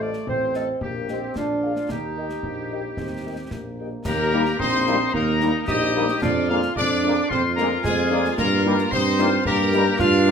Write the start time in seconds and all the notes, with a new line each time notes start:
Already playing: A1 A3
0.00 C5 D5 D#5 F5
0.13 snare
0.27 A1 C4 C5, concert bass drum
0.54 A4 C5 D#5 F5, snare
0.81 A#1 A#3 G4, concert bass drum
1.08 C4 G4 A#4 D#5 G5, snare
1.35 A#1 D4 F4, concert bass drum, snare
1.62 G#4 A#4 F5
1.76 snare
1.89 D#2 D#4 G4, concert bass drum, snare
2.17 G4 A#4 D#5 G5
2.30 snare
2.43 A#1 A#3, concert bass drum
2.70 G4 A#4 D#5 G5
2.97 D#2 C4, concert bass drum, snare
3.24 G4 A#4 D#5 G5
3.50 A#1 A#3, concert bass drum, snare
3.78 G4 A#4 D#5 G5
4.05 D#2 A#3 G4 A#4 A#5, concert bass drum, snare, crash
4.33 G3 A#3 D#4
4.46 snare
4.58 A#1 C4 D#4 C5 C6, concert bass drum
4.87 G3 A#3 D#4, snare
5.13 D#2 A#3 D#4 A#4 A#5, concert bass drum
5.41 G3 A#3 D#4, snare
5.67 A#1 D#4 G4 D#5 D#6, concert bass drum, snare
5.95 G3 A#3 D#4
6.09 snare
6.21 F2 D4 F4 D5 D6, concert bass drum, snare, crash
6.49 G#3 A#3 D4 F4 F5 F6
6.62 snare
6.76 F2 D4 D5 D6, concert bass drum
7.03 G#3 A#3 D4
7.29 F2 C4 F4 C5 C6, concert bass drum
7.55 G#3 A#3 D4 A#4 A#5, snare
7.83 F2 G#3 G#4 G#5, concert bass drum, snare
8.11 G#3 A#3 D4
8.25 snare
8.37 G2 A#3 A#4 A#5, concert bass drum, snare, crash
8.65 G3 A#3 D#4
8.79 snare
8.91 G2 C4 D#4 C5 C6, concert bass drum
9.19 G3 A#3 D#4 F4, snare
9.45 G2 A#3 G4 A#4 A#5, concert bass drum
9.72 G3 A#3 D#4, snare
9.98 G2 D4 F4 F5 F6, concert bass drum, snare
10.27 G3 A#3 D#4